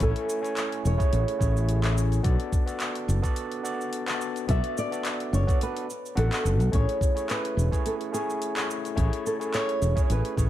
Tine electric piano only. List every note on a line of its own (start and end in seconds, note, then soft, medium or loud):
0.00 0.39 A3 medium
0.00 0.39 C#4 medium
0.00 0.39 E4 medium
0.00 0.40 C#5 loud
0.00 0.40 G#5 medium
0.41 0.95 A3 medium
0.41 0.95 C#4 medium
0.41 0.95 E4 medium
0.41 0.96 C#5 medium
0.41 0.95 G#5 medium
0.97 1.36 A3 medium
0.97 1.37 C#4 medium
0.97 1.37 E4 medium
0.97 1.37 G#4 medium
0.97 1.37 C#5 loud
1.38 1.79 A3 medium
1.38 1.79 C#4 medium
1.38 1.80 E4 medium
1.38 1.80 G#4 medium
1.38 1.80 C#5 medium
1.83 2.21 A3 medium
1.83 2.21 C#4 medium
1.83 2.21 E4 medium
1.83 2.22 G#4 medium
1.83 2.22 C#5 medium
2.23 2.64 B3 medium
2.23 2.64 D4 medium
2.23 2.64 F#4 medium
2.23 2.64 A4 medium
2.23 2.64 D5 loud
2.66 3.19 B3 medium
2.66 3.20 D4 medium
2.66 3.20 F#4 medium
2.66 3.20 A4 medium
2.66 3.20 D5 medium
3.22 3.61 B3 medium
3.22 3.61 D4 medium
3.22 3.61 F#4 medium
3.22 3.61 A4 medium
3.22 3.62 D5 loud
3.63 4.04 B3 medium
3.63 4.04 D4 medium
3.63 4.04 F#4 medium
3.63 4.04 A4 medium
3.63 4.05 D5 medium
4.06 4.45 B3 medium
4.06 4.45 D4 medium
4.06 4.46 F#4 medium
4.06 4.46 A4 medium
4.06 4.46 D5 medium
4.48 4.88 B3 medium
4.48 4.88 D4 medium
4.48 4.89 F#4 medium
4.48 4.89 A4 medium
4.48 4.89 D5 loud
4.91 5.44 B3 medium
4.91 5.44 D4 medium
4.91 5.45 F#4 medium
4.91 5.45 A4 medium
4.91 5.45 D5 medium
5.47 5.85 B3 medium
5.47 5.86 D4 medium
5.47 5.86 F#4 medium
5.47 5.86 A4 medium
5.47 5.86 D5 loud
6.15 6.69 B3 medium
6.15 6.69 D4 medium
6.15 6.69 F#4 medium
6.15 6.70 A4 medium
6.15 6.70 F#5 loud
6.71 7.12 A3 medium
6.71 7.12 C#4 medium
6.71 7.13 E4 medium
6.71 7.13 G#4 medium
6.71 7.13 C#5 loud
7.14 7.68 A3 medium
7.14 7.68 C#4 medium
7.14 7.68 E4 medium
7.14 7.68 G#4 medium
7.14 7.69 C#5 medium
7.71 8.10 A3 medium
7.71 8.10 C#4 medium
7.71 8.10 E4 medium
7.71 8.10 G#4 medium
7.71 8.10 C#5 loud
8.12 8.52 A3 medium
8.12 8.52 C#4 medium
8.12 8.53 E4 medium
8.12 8.53 G#4 medium
8.12 8.53 C#5 medium
8.55 8.94 A3 medium
8.55 8.94 C#4 medium
8.55 8.94 E4 medium
8.55 8.94 G#4 medium
8.55 8.94 C#5 medium
8.95 9.36 A3 medium
8.95 9.36 C#4 medium
8.95 9.37 E4 medium
8.95 9.37 G#4 medium
8.95 9.37 C#5 loud
9.39 9.92 A3 medium
9.39 9.93 C#4 medium
9.39 9.93 E4 medium
9.39 9.93 G#4 medium
9.39 9.93 C#5 medium
9.95 10.34 A3 medium
9.95 10.34 C#4 medium
9.95 10.34 E4 medium
9.95 10.34 G#4 medium
9.95 10.34 C#5 loud
10.37 10.50 A3 medium
10.37 10.50 C#4 medium
10.37 10.50 E4 medium
10.37 10.50 G#4 medium
10.37 10.50 C#5 medium